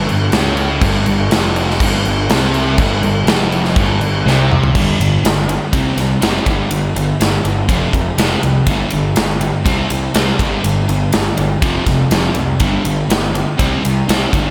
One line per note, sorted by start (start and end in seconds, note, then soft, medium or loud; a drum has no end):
0.08 0.32 G1 medium
0.08 0.28 G2 medium
0.08 crash medium
0.32 0.79 C#2 loud
0.32 0.81 C#3 medium
0.32 snare loud
0.32 crash medium
0.57 crash medium
0.82 1.05 G1 loud
0.82 1.05 G2 loud
0.82 kick loud
0.82 crash medium
1.06 1.30 G1 medium
1.06 1.26 G2 medium
1.06 crash medium
1.31 1.78 F1 loud
1.31 1.79 F2 loud
1.31 snare loud
1.31 crash medium
1.56 crash medium
1.71 snare soft
1.80 2.03 G1 loud
1.80 2.03 G2 loud
1.80 kick loud
1.80 crash medium
2.04 2.28 G1 medium
2.04 2.24 G2 medium
2.04 crash medium
2.29 2.76 C2 medium
2.29 2.78 C3 loud
2.29 snare loud
2.29 crash medium
2.54 crash medium
2.78 3.01 G1 loud
2.78 3.01 G2 loud
2.78 kick loud
2.78 crash medium
3.02 3.26 G1 medium
3.02 3.22 G2 medium
3.02 crash medium
3.27 3.74 F1 medium
3.27 3.76 F2 loud
3.27 snare loud
3.27 crash medium
3.52 crash medium
3.65 snare soft
3.76 3.99 G1 medium
3.76 3.99 G2 loud
3.76 kick loud
3.76 crash medium
4.01 4.24 G1 medium
4.01 4.20 G2 medium
4.01 crash medium
4.26 4.71 C2 medium
4.26 4.74 C3 loud
4.26 snare medium
4.52 mid tom medium
4.63 floor tom loud
4.75 4.92 G1 medium
4.75 4.98 G2 medium
4.75 4.98 D3 medium
4.75 4.98 G3 medium
4.75 kick loud
4.75 crash loud
5.00 5.16 G1 medium
5.00 5.22 G2 medium
5.00 5.22 D3 medium
5.00 ride medium
5.24 5.57 G1 medium
5.24 5.46 G2 medium
5.24 5.46 D3 medium
5.24 snare loud
5.24 ride medium
5.48 5.70 G2 medium
5.48 5.70 D3 medium
5.48 ride medium
5.72 5.89 C2 medium
5.72 5.96 C3 loud
5.72 5.96 G3 medium
5.72 5.96 C4 medium
5.72 kick loud
5.72 ride loud
5.97 6.14 C2 medium
5.97 6.19 C3 medium
5.97 6.19 G3 medium
5.97 snare soft
5.97 ride medium
6.21 6.39 F#1 medium
6.21 6.44 C3 medium
6.21 6.45 G3 medium
6.21 6.45 C4 loud
6.21 snare loud
6.21 ride medium
6.46 6.63 G1 loud
6.46 6.69 G2 medium
6.46 6.70 D3 medium
6.46 6.70 G3 loud
6.46 kick loud
6.46 ride medium
6.71 6.88 G1 medium
6.71 6.93 G2 medium
6.71 6.93 D3 medium
6.71 ride medium
6.95 7.12 G1 medium
6.95 7.17 G2 medium
6.95 7.18 D3 medium
6.95 ride medium
7.20 7.37 G1 medium
7.20 7.42 G2 medium
7.20 7.42 D3 medium
7.20 snare loud
7.20 ride medium
7.44 7.62 G1 medium
7.44 7.66 G2 medium
7.44 7.66 D3 medium
7.44 ride medium
7.68 7.86 F1 medium
7.68 7.92 F2 medium
7.68 7.92 C3 medium
7.68 7.92 F3 medium
7.68 kick loud
7.68 ride medium
7.93 8.10 F1 medium
7.93 8.16 F2 medium
7.93 8.16 C3 medium
7.93 kick medium
7.93 ride medium
8.18 8.35 F1 medium
8.18 8.41 F2 medium
8.18 8.42 C3 medium
8.18 8.42 F3 loud
8.18 snare loud
8.18 ride medium
8.43 8.60 C2 medium
8.43 8.65 F2 medium
8.43 8.65 C3 medium
8.43 ride medium
8.67 8.83 G1 medium
8.67 8.90 G2 medium
8.67 8.91 D3 medium
8.67 8.91 G3 medium
8.67 kick loud
8.67 ride medium
8.90 9.09 G1 medium
8.90 9.14 G2 medium
8.90 9.15 D3 medium
8.90 ride medium
9.16 9.50 G1 medium
9.16 9.38 G2 medium
9.16 9.39 D3 medium
9.16 snare loud
9.16 ride medium
9.41 9.64 G2 medium
9.41 9.64 D3 medium
9.41 ride medium
9.65 9.83 C2 medium
9.65 9.88 C3 medium
9.65 9.89 G3 medium
9.65 9.89 C4 loud
9.65 kick loud
9.65 ride loud
9.89 10.07 C2 medium
9.89 10.12 C3 medium
9.89 10.12 G3 medium
9.89 ride medium
10.14 10.31 C2 medium
10.14 10.38 C3 medium
10.14 10.38 G3 loud
10.14 10.38 C4 loud
10.14 snare loud
10.14 ride medium
10.38 10.56 G1 medium
10.38 10.62 G2 medium
10.38 10.62 D3 medium
10.38 10.62 G3 medium
10.38 kick medium
10.38 ride medium
10.64 10.81 G1 loud
10.64 10.86 G2 medium
10.64 10.87 D3 medium
10.64 ride medium
10.88 11.05 G1 loud
10.88 11.11 G2 medium
10.88 11.11 D3 medium
10.88 ride medium
11.12 11.30 G1 medium
11.12 11.36 G2 medium
11.12 11.36 D3 medium
11.12 snare loud
11.12 ride medium
11.37 11.55 G1 loud
11.37 11.60 G2 medium
11.37 11.60 D3 medium
11.37 ride medium
11.62 11.79 F1 medium
11.62 11.85 F2 medium
11.62 11.86 C3 loud
11.62 11.86 F3 loud
11.62 kick loud
11.62 ride medium
11.86 12.03 F1 medium
11.86 12.09 F2 medium
11.86 12.09 C3 medium
11.86 kick medium
11.86 snare soft
11.86 ride medium
12.11 12.28 F1 loud
12.11 12.35 F2 medium
12.11 12.35 C3 medium
12.11 12.35 F3 loud
12.11 snare medium
12.11 ride medium
12.35 12.52 C2 medium
12.35 12.58 F2 medium
12.35 12.59 C3 medium
12.35 ride medium
12.60 12.77 G1 loud
12.60 12.83 G2 medium
12.60 12.84 D3 loud
12.60 12.84 G3 medium
12.60 kick loud
12.60 ride medium
12.85 13.02 G1 medium
12.85 13.08 G2 medium
12.85 13.08 D3 medium
12.85 ride medium
13.09 13.43 G1 medium
13.09 13.32 G2 medium
13.09 13.32 D3 medium
13.09 snare loud
13.09 ride medium
13.33 13.56 G2 medium
13.33 13.57 D3 medium
13.33 ride medium
13.58 13.76 C2 medium
13.58 13.82 C3 medium
13.58 13.82 G3 medium
13.58 13.82 C4 medium
13.58 kick loud
13.58 ride medium
13.83 14.02 C2 medium
13.83 14.06 C3 medium
13.83 14.06 G3 medium
13.83 ride medium
14.08 14.26 C2 medium
14.08 14.32 C3 medium
14.08 14.32 G3 medium
14.08 14.32 C4 medium
14.08 snare loud
14.08 ride medium
14.32 14.50 G1 medium
14.32 14.51 G2 medium
14.32 14.51 D3 loud
14.32 14.51 G3 medium
14.32 kick loud
14.32 ride medium